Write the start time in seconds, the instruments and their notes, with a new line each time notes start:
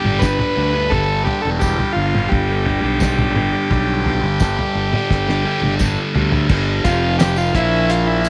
Already playing: distorted electric guitar G2, transistor combo organ G4
0.04 fingered electric bass G1, distorted electric guitar D3 G3, mid tom
0.19 distorted electric guitar G2 D3, transistor combo organ B4, kick, snare, tambourine
0.23 distorted electric guitar G3
0.39 floor tom, mid tom
0.56 fingered electric bass D2, distorted electric guitar G2 D3 G3
0.73 distorted electric guitar D3 G3
0.90 fingered electric bass G1, distorted electric guitar G2 D3 G3, transistor combo organ A4, kick, floor tom
1.25 distorted electric guitar G2 D3 G3, transistor combo organ G4, floor tom
1.42 fingered electric bass E1, distorted electric guitar D3 G3, transistor combo organ A4
1.59 distorted electric guitar G2 D3 G3, transistor combo organ G4, kick, tambourine
1.79 distorted electric guitar D3 G3, floor tom
1.93 fingered electric bass G1, transistor combo organ F4
2.14 distorted electric guitar D3 G3, mid tom
2.29 fingered electric bass G1, transistor combo organ G4, kick, floor tom
2.49 distorted electric guitar D3 G3
2.66 distorted electric guitar G2 D3 G3, floor tom
2.83 fingered electric bass B1, distorted electric guitar D3 G3
3.00 distorted electric guitar G2 D3 G3, kick, snare, tambourine
3.19 floor tom, mid tom
3.35 fingered electric bass G1, distorted electric guitar G2 D3 G3, mid tom
3.53 distorted electric guitar D3 G3
3.70 fingered electric bass B1, distorted electric guitar G2 D3 G3, kick, floor tom
4.05 distorted electric guitar G2 D3 G3, floor tom
4.22 fingered electric bass G1, distorted electric guitar D3 G3
4.40 distorted electric guitar G2 D3 G3, kick, snare, tambourine
4.57 distorted electric guitar D3 G3, floor tom
4.75 fingered electric bass G1
4.93 distorted electric guitar D3 G3, mid tom
5.10 fingered electric bass G1, kick, snare
5.27 distorted electric guitar D3 G3, snare
5.44 distorted electric guitar G2 D3 G3
5.62 fingered electric bass G1, distorted electric guitar D3 G3, high tom
5.79 distorted electric guitar G2 D3 G3, kick, mid tom, tambourine
6.15 fingered electric bass D2, distorted electric guitar G2 D3 G3, floor tom
6.32 distorted electric guitar D3 G3, floor tom
6.49 fingered electric bass G1, distorted electric guitar G2 D3 G3, kick, crash
6.84 fingered electric bass F1, distorted electric guitar F2 C3 F3, transistor combo organ F4, kick, closed hi-hat, tambourine
7.19 transistor combo organ G4, snare, closed hi-hat, tambourine
7.36 transistor combo organ F4, tambourine
7.55 fingered electric bass A#1, distorted electric guitar A#2 F3 A#3, transistor combo organ E4, kick, closed hi-hat
7.90 transistor combo organ F4, closed hi-hat, tambourine
8.07 transistor combo organ E4
8.24 closed hi-hat, tambourine